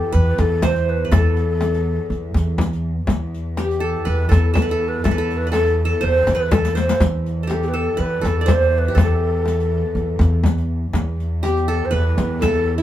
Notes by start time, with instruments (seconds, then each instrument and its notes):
Already playing: cello section E2, qanun G4, ney A4
0.12 upright bass E2, qanun B4, ney B4, riq
0.38 upright bass E2, ney A4, riq, frame drum
0.62 qanun C5, ney C5, riq, frame drum
0.76 riq
0.89 ney B4
1.05 qanun B4
1.11 upright bass E2, qanun A4, ney A4, riq, frame drum
1.37 riq
1.61 riq, frame drum
1.75 riq
2.10 upright bass E2, riq
2.34 upright bass E2, riq, frame drum
2.58 riq, frame drum
2.73 riq
3.07 cello section E2, upright bass E2, riq, frame drum
3.34 riq
3.57 qanun G4, ney G4, riq, frame drum
3.71 riq
3.80 qanun A4
3.85 ney A4
4.05 upright bass E2, qanun B4, ney B4, riq
4.29 upright bass E2, qanun A4, ney A4, riq, frame drum
4.54 qanun A4, ney A4, riq, frame drum
4.62 qanun B4
4.69 qanun A4, riq
4.88 ney B4
5.04 upright bass E2, qanun A4, ney A4, riq, frame drum
5.11 qanun B4
5.18 qanun A4
5.30 riq
5.37 ney B4
5.47 qanun B4
5.52 qanun A4, ney A4, riq, frame drum
5.67 riq
5.85 qanun A4, ney A4
6.01 upright bass E2, qanun C5, ney C5
6.27 upright bass E2, riq, frame drum
6.35 qanun B4, ney B4
6.51 qanun A4, ney A4, riq, frame drum
6.65 riq
6.75 qanun C5, ney C5, riq
6.89 riq
7.00 upright bass E2, cello section E2, riq, frame drum
7.26 riq
7.43 qanun A4
7.47 qanun G4, ney G4, riq, frame drum
7.54 ney A4
7.63 ney G4, riq
7.68 ney B4
7.74 qanun A4, ney A4
7.97 upright bass E2, qanun B4, ney B4, riq
8.21 upright bass E2, qanun A4, riq, frame drum
8.27 ney A4
8.41 qanun D5
8.46 qanun C5, riq, frame drum
8.53 ney C5
8.62 riq
8.78 ney B4
8.88 qanun G4
8.95 upright bass E2, qanun A4, riq, frame drum
9.03 ney A4
9.46 riq, frame drum
9.60 riq
9.95 upright bass E2, riq
10.19 upright bass E2, riq, frame drum
10.44 riq, frame drum
10.58 riq
10.93 upright bass E2, cello section E2, riq, frame drum
11.20 riq
11.43 qanun G4, ney G4, riq, frame drum
11.57 riq
11.68 qanun A4, ney A4
11.85 ney C5
11.91 upright bass E2, qanun B4, ney B4, riq
12.17 upright bass E2, riq, frame drum
12.41 ney A4, qanun A4, riq, frame drum
12.54 riq
12.78 qanun E4, ney E4